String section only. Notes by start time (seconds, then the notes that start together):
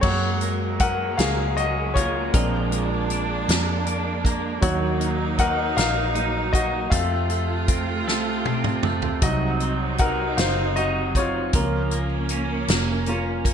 0.02 F#3 G#3 A#3
2.33 D4
4.63 F#3 D#4
6.92 C3 A3 F4
9.23 F#3 D#4
11.53 A#3 C#4